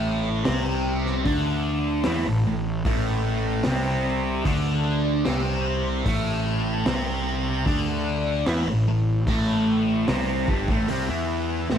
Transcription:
0.00 0.43 A1 loud
0.00 0.44 A2 medium
0.00 0.45 A3 medium
0.44 1.23 C2 loud
0.44 1.24 C3 medium
0.44 1.25 C4 medium
0.44 snare loud
0.44 open hi-hat medium
1.06 snare soft
1.25 2.02 D2 medium
1.25 2.04 D3 medium
1.25 2.05 D4 loud
1.25 kick loud
1.25 open hi-hat medium
2.04 2.25 E2 loud
2.04 2.25 E3 medium
2.04 2.25 E4 loud
2.04 snare loud
2.04 open hi-hat medium
2.25 2.45 A1 medium
2.25 2.45 A2 medium
2.45 2.83 A1 medium
2.45 2.79 A2 medium
2.85 3.62 A1 medium
2.85 3.65 A2 medium
2.85 3.65 A3 loud
2.85 kick loud
2.85 open hi-hat medium
3.64 4.43 C2 medium
3.64 4.45 C3 medium
3.64 4.45 C4 medium
3.64 snare loud
3.64 open hi-hat medium
4.45 5.22 D2 loud
4.45 5.25 D3 medium
4.45 5.25 D4 loud
4.45 kick loud
4.45 open hi-hat medium
5.25 6.03 C2 medium
5.25 6.04 C3 medium
5.25 6.05 C4 loud
5.25 snare loud
5.25 open hi-hat medium
6.05 6.82 A1 medium
6.05 6.85 A2 medium
6.05 6.85 A3 loud
6.05 kick loud
6.05 open hi-hat medium
6.86 7.63 C2 medium
6.86 7.66 C3 medium
6.86 7.66 C4 loud
6.86 snare loud
6.86 open hi-hat medium
7.66 8.43 D2 loud
7.66 8.46 D3 medium
7.66 8.46 D4 loud
7.66 kick loud
7.66 open hi-hat medium
8.46 8.66 E2 loud
8.46 8.66 E3 medium
8.46 8.66 E4 medium
8.46 snare loud
8.46 open hi-hat medium
8.66 8.86 A1 medium
8.66 8.87 A2 medium
8.87 9.25 A1 medium
8.87 9.20 A2 medium
9.27 10.04 A1 loud
9.27 10.07 A2 medium
9.27 10.08 A3 loud
9.27 kick loud
9.27 open hi-hat medium
10.08 10.46 C2 medium
10.08 10.47 C3 medium
10.08 10.48 C4 loud
10.08 snare loud
10.08 open hi-hat medium
10.48 10.67 G1 medium
10.48 10.67 G2 medium
10.48 10.68 G3 loud
10.48 kick loud
10.68 10.88 A1 medium
10.68 10.88 A2 medium
10.68 10.89 A3 medium
10.68 kick loud
10.68 snare soft
10.88 11.08 C2 medium
10.88 11.08 C3 medium
10.88 11.08 C4 medium
10.88 open hi-hat medium
11.09 11.66 E2 medium
11.09 11.68 E3 medium
11.09 11.69 E4 loud
11.70 11.78 A1 medium
11.70 11.78 A2 medium
11.70 11.78 A3 loud
11.70 snare medium

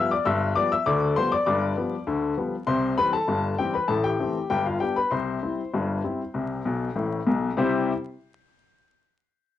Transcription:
0.00 0.12 F3 medium
0.00 0.12 G3 medium
0.00 0.13 B3 medium
0.00 0.10 E6 loud
0.11 0.26 D5 medium
0.11 0.26 D6 loud
0.25 0.52 G1 medium
0.25 0.51 G2 loud
0.25 0.54 E5 medium
0.25 0.54 E6 loud
0.56 0.73 F3 medium
0.56 0.73 G3 medium
0.56 0.73 B3 medium
0.56 0.71 D5 medium
0.56 0.71 D6 loud
0.72 0.86 E5 medium
0.72 0.87 E6 loud
0.86 1.12 D2 medium
0.86 1.12 D3 medium
0.86 1.15 D5 medium
0.86 1.15 D6 loud
1.16 1.34 F3 medium
1.16 1.34 G3 medium
1.16 1.34 B3 medium
1.16 1.31 C5 medium
1.16 1.32 C6 loud
1.32 1.46 D5 medium
1.32 1.45 D6 loud
1.46 1.72 G1 medium
1.46 1.72 G2 medium
1.46 2.04 D5 medium
1.46 1.95 D6 loud
1.77 1.93 F3 medium
1.77 1.94 G3 medium
1.77 1.94 B3 medium
2.07 2.33 D2 medium
2.07 2.33 D3 medium
2.37 2.54 F3 medium
2.37 2.54 G3 medium
2.37 2.54 B3 medium
2.67 2.93 C2 medium
2.67 2.93 C3 medium
2.67 2.96 C5 medium
2.67 2.91 C6 loud
2.98 3.14 E3 medium
2.98 3.15 G3 medium
2.98 3.15 C4 medium
2.98 3.12 B4 medium
2.98 3.13 B5 loud
3.13 3.56 A4 medium
3.13 3.56 A5 loud
3.28 3.54 G1 medium
3.28 3.54 G2 medium
3.59 3.76 E3 medium
3.59 3.76 G3 medium
3.59 3.76 C4 medium
3.59 3.73 G4 medium
3.59 3.74 G5 medium
3.74 3.89 B4 medium
3.74 3.89 B5 medium
3.88 4.15 A1 medium
3.88 4.15 A2 medium
3.88 4.03 A4 medium
3.88 4.04 A5 medium
4.04 4.47 G4 medium
4.04 4.48 G5 loud
4.19 4.36 E3 medium
4.19 4.37 A3 soft
4.19 4.37 C4 medium
4.50 4.76 G1 medium
4.50 4.76 G2 medium
4.50 4.65 G4 medium
4.50 4.65 G5 medium
4.66 4.80 F4 medium
4.66 4.81 F5 medium
4.80 4.98 G3 soft
4.80 4.98 B3 soft
4.80 4.98 D4 medium
4.80 4.95 G4 medium
4.80 4.96 G5 medium
4.96 5.11 B4 medium
4.96 5.12 B5 medium
5.11 5.38 C2 medium
5.11 5.38 C3 medium
5.11 7.23 C5 medium
5.11 7.22 C6 medium
5.42 5.59 G3 soft
5.42 5.60 C4 medium
5.42 5.60 E4 medium
5.73 6.00 G1 medium
5.73 6.00 G2 medium
6.04 6.21 G3 soft
6.04 6.21 C4 soft
6.04 6.21 E4 medium
6.34 6.60 C2 medium
6.34 6.60 C3 medium
6.65 6.88 B1 medium
6.65 6.88 B2 medium
6.96 7.19 A1 medium
6.96 7.19 A2 medium
7.26 7.49 B1 medium
7.26 7.49 B2 medium
7.57 7.91 C3 loud
7.57 7.91 G3 medium
7.57 7.91 E4 medium
7.57 7.91 G4 medium
7.57 7.92 C5 medium
7.57 7.92 E5 medium

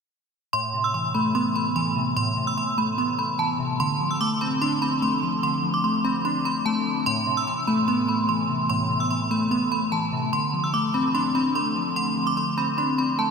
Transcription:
0.53 1.56 A2 medium
0.53 0.82 C6 loud
0.74 1.76 C3 medium
0.84 0.94 E6 medium
0.94 1.75 E3 medium
0.94 1.13 C6 medium
1.14 1.54 A3 medium
1.14 1.33 B5 medium
1.35 2.37 B3 medium
1.35 1.54 C6 medium
1.55 2.57 A3 medium
1.55 1.74 B5 medium
1.76 2.56 E3 medium
1.76 2.14 C6 medium
1.96 2.36 C3 medium
2.17 3.19 A2 medium
2.17 2.45 C6 loud
2.37 3.39 C3 medium
2.47 2.57 E6 medium
2.58 3.38 E3 medium
2.58 2.76 C6 medium
2.78 3.18 A3 medium
2.78 2.97 B5 medium
2.98 3.80 B3 medium
2.98 3.17 C6 medium
3.19 3.80 A3 medium
3.19 3.38 B5 medium
3.39 3.80 E3 medium
3.39 3.77 A5 medium
3.59 3.80 C3 medium
3.80 4.82 D3 medium
3.80 4.09 C6 loud
4.01 5.02 F3 medium
4.11 4.20 E6 medium
4.21 5.01 A3 medium
4.21 4.40 D6 loud
4.41 4.81 C4 medium
4.41 4.60 B5 medium
4.62 5.64 D4 medium
4.62 4.80 C6 loud
4.82 5.84 C4 medium
4.82 5.01 B5 medium
5.02 5.83 A3 medium
5.02 5.41 C6 medium
5.23 5.62 F3 medium
5.43 6.45 D3 medium
5.43 5.72 C6 medium
5.63 6.66 F3 medium
5.74 5.83 D6 medium
5.84 6.65 A3 medium
5.84 6.03 C6 medium
6.04 6.44 C4 medium
6.04 6.23 B5 medium
6.25 7.07 D4 medium
6.25 6.44 C6 medium
6.45 7.06 C4 medium
6.45 6.64 B5 medium
6.66 7.06 A3 medium
6.66 7.04 A5 medium
6.86 7.06 F3 medium
7.06 8.09 A2 medium
7.06 7.35 C6 loud
7.27 8.29 C3 medium
7.37 7.47 E6 medium
7.47 8.28 E3 medium
7.47 7.66 C6 medium
7.67 8.07 A3 medium
7.67 7.86 B5 medium
7.88 8.90 B3 medium
7.88 8.07 C6 medium
8.08 9.11 A3 medium
8.08 8.27 B5 medium
8.29 9.09 E3 loud
8.29 8.67 C6 medium
8.49 8.89 C3 medium
8.69 9.72 A2 medium
8.69 8.98 C6 loud
8.90 9.92 C3 medium
9.00 9.10 E6 medium
9.11 9.91 E3 medium
9.11 9.29 C6 medium
9.31 9.71 A3 medium
9.31 9.50 B5 medium
9.51 10.33 B3 medium
9.51 9.70 C6 medium
9.72 10.33 A3 medium
9.72 9.91 B5 medium
9.92 10.33 E3 medium
9.92 10.30 A5 medium
10.12 10.33 C3 medium
10.33 11.35 D3 medium
10.33 10.62 C6 loud
10.54 11.56 F3 medium
10.64 10.73 E6 medium
10.74 11.54 A3 medium
10.74 10.93 D6 medium
10.94 11.34 C4 medium
10.94 11.13 B5 medium
11.15 12.17 D4 medium
11.15 11.34 C6 medium
11.35 12.37 C4 medium
11.35 11.54 B5 medium
11.55 12.36 A3 medium
11.55 11.94 C6 medium
11.76 12.15 F3 medium
11.96 12.98 D3 medium
11.96 12.25 C6 loud
12.16 13.19 F3 medium
12.27 12.36 D6 medium
12.37 13.17 A3 medium
12.37 12.56 C6 medium
12.57 12.97 C4 loud
12.57 12.76 B5 medium
12.78 13.31 D4 medium
12.78 12.97 C6 medium
12.98 13.31 C4 medium
12.98 13.17 B5 medium
13.19 13.31 A3 loud
13.19 13.31 A5 medium

